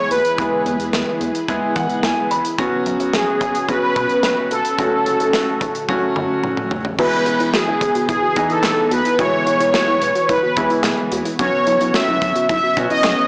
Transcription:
Already playing: E3 G#3 B3 E4 G#4 B4
0.11 D#2 B4, closed hi-hat
0.25 closed hi-hat
0.38 E2 G#3 B3 E4 G#4, kick, closed hi-hat
0.66 E2, closed hi-hat
0.80 E2, closed hi-hat
0.93 E2, snare, closed hi-hat
1.21 E2, closed hi-hat
1.35 closed hi-hat
1.48 E2 G#3 B3 E4 G#4, kick, closed hi-hat
1.76 E3 F#5, kick, closed hi-hat
1.89 closed hi-hat
2.03 E2 G#5, snare, closed hi-hat
2.31 A1 B5, closed hi-hat
2.45 closed hi-hat
2.58 B1 F#3 B3 C#4 F#4, kick, closed hi-hat
2.86 B1, closed hi-hat
3.00 B1, closed hi-hat
3.13 B1 G#4, snare, closed hi-hat
3.41 B1, kick, closed hi-hat
3.55 closed hi-hat
3.68 B1 F#3 B3 C#4 F#4 B4, kick, closed hi-hat
3.96 B2, kick, closed hi-hat
4.09 closed hi-hat
4.23 B1, snare, closed hi-hat
4.51 E1 A4, closed hi-hat
4.65 closed hi-hat
4.78 F#1 F#3 A3 C#4 F#4, kick, closed hi-hat
5.06 F#1, closed hi-hat
5.20 F#1, closed hi-hat
5.33 F#1, snare, closed hi-hat
5.61 F#1, kick, closed hi-hat
5.75 closed hi-hat
5.89 F#1 F#3 A3 C#4 F#4, kick, high tom
6.16 F#2, mid tom
6.44 F#1, mid tom
6.57 mid tom
6.71 F#1, floor tom
6.85 floor tom
6.98 E1 E3 G#3 B3 E4 F#4 B4 G#5, kick, crash
7.26 E1 E4, closed hi-hat
7.40 E1 E4, closed hi-hat
7.54 F#4 G#4, snare, closed hi-hat
7.67 E1 E4
7.81 E1, kick, closed hi-hat
7.95 F#4, closed hi-hat
8.09 E1 E4 G#4, kick, closed hi-hat
8.22 F#4
8.36 E2 E3 B3 D#4, kick, closed hi-hat
8.50 E4 A4, closed hi-hat
8.64 E1 G#4, snare, clap, closed hi-hat
8.91 E2 F#4 B4, closed hi-hat
9.05 E4, closed hi-hat
9.19 E1 E3 G#3 B3 E4 F#4 C#5, kick, closed hi-hat
9.46 E1 E4, closed hi-hat
9.60 E1 E4, closed hi-hat
9.74 F#4, snare, closed hi-hat
9.88 E1 E4
10.02 E1, closed hi-hat
10.15 F#4, closed hi-hat
10.29 E1 E4 B4, kick, closed hi-hat
10.43 F#4
10.57 E2 E3 G#3 B3 E4, kick, closed hi-hat
10.70 E4, closed hi-hat
10.84 E1 G#4, snare, clap, closed hi-hat
11.12 E2 F#4, closed hi-hat
11.25 E4, closed hi-hat
11.39 B1 F#3 B3 C#4 F#4 C#5, kick, closed hi-hat
11.67 B1 E4, closed hi-hat
11.81 B1 E4, closed hi-hat
11.94 F#4 E5, snare, closed hi-hat
12.08 B1 E4
12.22 B1, kick, closed hi-hat
12.36 F#4, closed hi-hat
12.49 B1 E4 E5, kick, closed hi-hat
12.63 F#4
12.77 B2 F#3 B3 C#4 F#4, kick, closed hi-hat
12.90 E4 D#5, closed hi-hat
13.04 B1 G#4, snare, clap, closed hi-hat

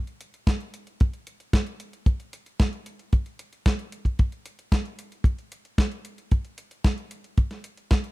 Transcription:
0.07 closed hi-hat
0.21 closed hi-hat
0.34 closed hi-hat
0.47 kick, snare, closed hi-hat
0.60 closed hi-hat
0.74 closed hi-hat
0.87 closed hi-hat
1.00 kick, closed hi-hat
1.14 closed hi-hat
1.27 closed hi-hat
1.40 closed hi-hat
1.53 kick, snare, closed hi-hat
1.67 closed hi-hat
1.80 closed hi-hat
1.93 closed hi-hat
2.06 kick, closed hi-hat
2.20 closed hi-hat
2.33 closed hi-hat
2.46 closed hi-hat
2.60 kick, snare, closed hi-hat
2.73 closed hi-hat
2.86 closed hi-hat
2.99 closed hi-hat
3.13 kick, closed hi-hat
3.26 closed hi-hat
3.39 closed hi-hat
3.53 closed hi-hat
3.66 kick, snare, closed hi-hat
3.79 closed hi-hat
3.92 closed hi-hat
4.05 kick, closed hi-hat
4.19 kick, closed hi-hat
4.32 closed hi-hat
4.46 closed hi-hat
4.59 closed hi-hat
4.72 kick, snare, closed hi-hat
4.85 closed hi-hat
4.99 closed hi-hat
5.12 closed hi-hat
5.24 kick, closed hi-hat
5.39 closed hi-hat
5.52 closed hi-hat
5.65 closed hi-hat
5.78 kick, snare, closed hi-hat
5.92 closed hi-hat
6.05 closed hi-hat
6.18 closed hi-hat
6.31 kick, closed hi-hat
6.45 closed hi-hat
6.58 closed hi-hat
6.71 closed hi-hat
6.84 kick, snare, closed hi-hat
6.98 closed hi-hat
7.11 closed hi-hat
7.24 closed hi-hat
7.38 kick, closed hi-hat
7.51 snare, closed hi-hat
7.64 closed hi-hat
7.77 closed hi-hat
7.91 kick, snare, closed hi-hat
8.04 closed hi-hat

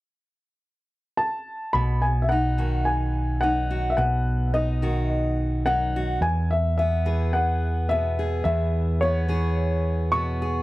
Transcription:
1.17 A5
1.73 B1 B2 B5
2.02 G#5
2.22 E5
2.29 D#4 F#5
2.58 D#3 F#4
2.85 G#5
3.41 F#2 D#4 F#5
3.71 F#4
3.90 E5
3.97 B1 B2 F#5
4.54 D#4 D#5
4.82 D#3 F#4
5.66 F#2 D#4 F#5
5.96 F#4
6.21 E2 G#5
6.51 E5
6.78 B3 E5
7.06 E3 G#4
7.33 F#5
7.89 B2 B3 E5
8.19 G#4
8.44 E2 E5
9.01 B3 C#5
9.28 E3 G#4
10.12 B2 B3 C#6
10.42 G#4

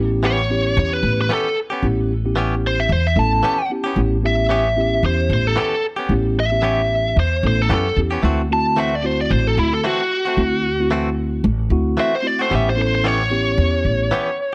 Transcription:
Already playing: A1 B3 C#4 E4 G4
0.23 E3 B3 C#4 G4 C#5
0.50 B3 C#4 E4 G4
0.77 E2 C#5
0.93 B4
1.03 A1
1.21 B4
1.29 E3 B3 C#4 G4
1.33 A4
1.70 B3 C#4 G4
1.82 A1 B3 C#4 E4 G4
2.24 B3 C#4 E4 G4
2.36 E3 B3 C#4 G4
2.67 C5
2.80 E5
2.89 E2 C5
3.07 E5
3.16 A1 B3 C#4 E4 A4 A5
3.43 E3 B3 C#4 G4
3.70 B3 C#4 E4 G4
3.84 B3 C#4 G4
3.96 A1 B3 C#4 E4 G4
4.23 B3 C#4 E4 G4 E5
4.49 E3 B3 C#4 G4
4.77 B3 C#4 E4 G4
5.03 E2 C5
5.30 A1 C5
5.47 A4
5.56 E3 B3 C#4 G4 A4
5.96 B3 C#4 G4
6.09 A1 B3 C#4 E4 G4
6.40 E5
6.51 B3 C#4 E4 G4
6.62 E3 B3 C#4 G4
7.16 E2 C5
7.43 A1 B3 C#4 E4 A4
7.47 C5
7.62 A4
7.69 F#2 E3 B3 C#4 G4
7.74 A4
7.97 E2 B3 C#4 E4 G4
8.11 B3 C#4 G4
8.22 D2 E3 A3 C4 E4 F#4
8.50 A3 C4 E4 F#4 A5
8.76 E3 A3 C4 F#4 E5
8.95 D5
9.02 A3 C4 E4 F#4 C5
9.21 D5
9.31 A1 C5
9.47 A4
9.57 D2 E4
9.73 A4
9.84 E3 A3 C4 F#4
10.25 A3 C4 F#4
10.37 D2 A3 C4 E4 F#4
10.79 A3 C4 E4 F#4
10.91 E3 A3 C4 F#4
11.44 A1
11.70 D2 A3 C4 E4 F#4
11.97 E3 A3 C4 F#4 E5
12.15 C5
12.23 A3 C4 E4 F#4
12.27 D5
12.39 A3 C4 F#4 C5
12.49 A1 E3 B3 C#4 E4 G4
12.55 E5
12.70 C5
12.76 B3 C#4 E4 A4
12.81 C5
12.95 C5
13.04 E3 B3 C#4 G4 C#5
13.31 B3 C#4 E4 G4
13.58 E2
13.85 A1
14.11 E3 B3 C#4 G4

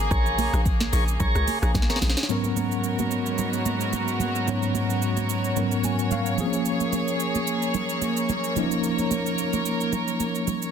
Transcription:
Already playing: C#3 A#3 G#4
0.11 A#1 G#4 A#4 C#5, kick, shaker
0.26 shaker
0.38 open hi-hat, high conga, shaker
0.53 A#1, cross-stick, shaker
0.66 kick, shaker
0.80 snare, high conga, shaker
0.92 A#1 G#4 A#4 C#5, open hi-hat, shaker
1.08 shaker
1.19 A#1 G#4 A#4 C#5, kick, low conga, shaker
1.35 C#2, cross-stick, shaker
1.48 open hi-hat, high conga, shaker
1.62 A#1 G#4 A#4 C#5, cross-stick, shaker
1.75 A#1, kick, snare, high conga, low conga, shaker
1.82 snare
1.89 G#4 A#4 C#5, snare, shaker
1.96 snare
2.02 A#1, snare, open hi-hat, high conga, low conga, shaker
2.10 snare
2.17 snare, shaker
2.23 snare
2.29 G#2 F#3 B3 C#4 F#4 A#4 C#5, shaker
2.44 high conga, shaker
2.56 high conga, shaker
2.71 shaker
2.84 shaker
2.99 high conga, shaker
3.11 shaker
3.26 shaker
3.38 low conga, shaker
3.53 shaker
3.66 high conga, shaker
3.81 shaker
3.93 high conga, low conga, shaker
4.08 shaker
4.20 high conga, low conga, shaker
4.35 shaker
4.47 G#2 F#3 B3 C#4 C#5, shaker
4.62 high conga, shaker
4.75 high conga, shaker
4.90 shaker
5.02 shaker
5.17 high conga, shaker
5.29 shaker
5.44 shaker
5.56 G#2 F#3 B3 C#4 A#4, low conga, shaker
5.71 shaker
5.84 G#5, high conga, shaker
5.99 shaker
6.11 F5, high conga, low conga, shaker
6.26 shaker
6.38 F3 A#3 C4 G#4, high conga, low conga, shaker
6.46 C#4
6.53 shaker
6.65 shaker
6.80 high conga, shaker
6.93 high conga, shaker
7.08 shaker
7.20 shaker
7.35 high conga, shaker
7.47 shaker
7.62 shaker
7.74 low conga, shaker
7.89 shaker
8.02 high conga, shaker
8.17 shaker
8.29 high conga, low conga, shaker
8.44 shaker
8.56 F3 A#3 C#4 D#4 A#4, high conga, low conga, shaker
8.71 shaker
8.84 shaker
8.98 high conga, shaker
9.11 high conga, shaker
9.26 shaker
9.38 shaker
9.53 high conga, shaker
9.66 shaker
9.81 shaker
9.93 low conga, shaker
10.08 shaker
10.20 high conga, shaker
10.35 shaker
10.47 high conga, low conga, shaker
10.62 shaker

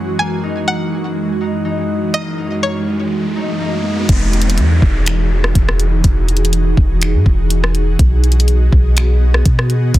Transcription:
Already playing: F#2 E3 G#3 A#3 C#4 E4 F#4 E5
0.19 A#3 G#5, riser
0.43 D#4
0.68 A#3 F#5
1.41 D#4
1.65 D#4
2.14 A#3 D#5
2.38 D#4
2.63 A#3 C#5
3.36 D#4
3.60 D#4
4.09 E1 E3 D#4 F#4 G#4, kick, closed hi-hat, downlifter
4.33 closed hi-hat
4.42 closed hi-hat
4.50 closed hi-hat
4.58 E2, closed hi-hat
4.82 E1, kick
5.06 finger snap, closed hi-hat
5.44 cross-stick
5.55 E1, kick, closed hi-hat
5.69 cross-stick
5.80 closed hi-hat
6.04 E1, kick, closed hi-hat
6.29 closed hi-hat
6.37 closed hi-hat
6.45 closed hi-hat
6.53 closed hi-hat
6.77 E1, kick
7.02 finger snap, closed hi-hat
7.14 G#2
7.26 E1, kick
7.50 closed hi-hat
7.64 cross-stick
7.75 closed hi-hat
7.99 B1 B3 D#5, kick, closed hi-hat
8.24 closed hi-hat
8.32 closed hi-hat
8.40 closed hi-hat
8.48 closed hi-hat
8.72 B1, kick
8.97 finger snap, closed hi-hat
9.34 cross-stick
9.46 B2, kick, closed hi-hat
9.59 cross-stick
9.70 closed hi-hat
9.94 B1, kick, closed hi-hat

